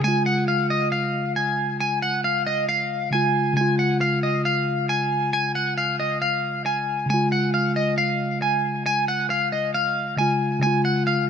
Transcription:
0.00 C#3 G#3
0.04 F4 G#5
0.26 F#5
0.48 F5
0.70 D#5
0.92 F5
1.36 G#5
1.80 G#5
2.02 F#5
2.24 F5
2.47 D#5
2.69 F5
3.11 C#3 G#3 F4 G#5
3.53 C#3 G#3 G#5
3.61 F4
3.79 F#5
4.01 F5
4.23 D#5
4.45 F5
4.89 G#5
5.33 G#5
5.55 F#5
5.78 F5
6.00 D#5
6.22 F5
6.66 G#5
7.06 C#3 G#3
7.10 F4 G#5
7.32 F#5
7.54 F5
7.76 D#5
7.98 F5
8.42 G#5
8.86 G#5
9.08 F#5
9.30 F5
9.52 D#5
9.74 F5
10.17 C#3 G#3 F4 G#5
10.59 C#3 G#5
10.63 G#3 F4
10.85 F#5
11.07 F5

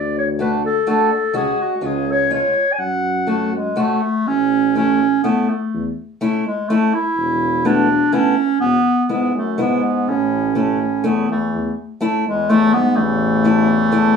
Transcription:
Already playing: D2 D5
0.18 C#5
0.39 A3 D4 F#4 B4
0.66 A4
0.87 A3 D4 F#4 A4
1.34 C#2 G#3 C#4 F#4 G#4
1.61 F#4
1.81 C#2 G#3 C#4 F4 G#4
2.11 C#5
2.30 G#3 C#4 F4 C#5
2.72 G#5
2.79 F#2 F#5
3.27 A3 C#4 F#4
3.56 G#3
3.76 A3 C#4 F#4
4.27 A1 C#4
4.75 A3 C#4 E4
5.23 A3 B3 C#4 E4
5.49 A3
5.74 E2
6.21 A3 C#4 E4
6.45 G#3
6.68 A3 C#4 E4
6.94 E4
7.17 E1
7.65 A3 B3 D4 E4
8.12 A3 B3 C#4 E4
8.60 E1 B3
9.09 G#2 G#3 B3 E4
9.35 F#2 A3
9.58 G#2 G#3 B3 E4
10.07 A1 A2 C#4
10.55 A2 A3 C#4 E4
11.04 E2 A3 B3 C#4 E4
11.29 E2 A3
11.53 E2
12.01 A3 C#4 E4
12.26 E2 G#3
12.49 E2 A3 C#4 E4
12.73 G#2 B3
12.96 A1 E2 A3
13.44 A3 C#4 E4
13.92 A3 C#4 E4

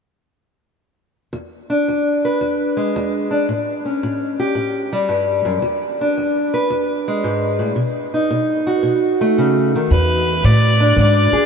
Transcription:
1.33 E2
1.70 D4
1.88 E2
2.25 B4
2.41 E2
2.77 G#3
2.96 E2
3.31 D4
3.49 A2
3.85 C#4
4.03 A2
4.40 G4
4.55 A2
4.93 G3
5.09 G2
5.45 F#2
5.62 E2
6.01 D4
6.17 E2
6.54 B4
6.70 E2
7.08 G#3
7.24 G#2
7.59 A2
7.76 B2
8.14 D#4
8.31 B2
8.67 F#4
8.83 B2
9.21 A3
9.38 C#3
9.76 D#3
9.90 E2 B4
10.43 E2 A2 D5
10.80 D4
10.96 E2 G#2
11.00 D5
11.32 G#4, muted upright bass stroke

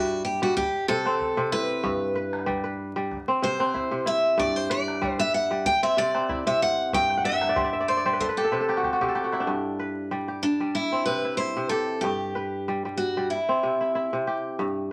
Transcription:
Already playing: G2 G3 E4 F#4 G4 A4 B4
0.25 G4
0.42 G3 F#4
0.57 G4, calabash thump, calabash click
0.88 C3 A4
1.05 C4, calabash click
1.20 calabash thump, calabash click
1.37 C3
1.52 E4 B4
1.83 G2, calabash thump
2.15 B4
2.33 calabash click
2.46 G3, calabash thump, calabash click
2.64 B4
2.96 G3
3.11 calabash thump, calabash click
3.28 C4
3.42 C3 C5
3.60 C4, calabash click
3.74 E4, calabash thump, calabash click
3.91 C3
4.06 E4 E5
4.38 G2 D5, calabash thump
4.56 C5
4.70 B4 D5
4.88 calabash click
5.02 G3, calabash thump, calabash click
5.19 B4 E5
5.34 F#5
5.51 G3
5.65 G5, calabash thump, calabash click
5.83 C4 E5
5.97 C3 D5
6.15 C4, calabash click
6.29 E4, calabash thump, calabash click
6.47 C3 E5
6.62 F#5
6.93 G2 G5, calabash thump
7.10 G5, calabash click
7.17 F#5
7.24 E5
7.33 F#5
7.41 E5, calabash click
7.49 D5
7.56 G3 C5, calabash thump
7.64 D5
7.73 E5
7.80 D5
7.88 C5 D5, calabash click
7.97 D5
8.06 G3 C5
8.13 B4
8.19 A4 C5, calabash thump
8.29 B4
8.37 G4 A4
8.44 A4
8.52 C3 B4
8.61 A4
8.69 G4, calabash click
8.77 F#4
8.83 G4, calabash thump, calabash click
8.93 F#4
9.01 C3 G4, calabash thump
9.08 A4
9.15 G4, calabash click
9.24 F#4
9.32 E4, calabash click
9.40 D4
9.47 G2
9.79 B4
10.11 G3
10.28 G4
10.43 D4
10.60 G3
10.75 E4
10.92 C4
11.06 C3 B4
11.25 E4
11.37 E4 C5
11.57 C3
11.69 G4 A4
12.01 G2 G4
12.35 B4
12.68 G3
12.85 G3
12.97 F#4
13.17 G3
13.30 E4
13.49 C4
13.63 C3
13.81 E4
13.95 E4
14.13 C3
14.27 G4
14.59 G2

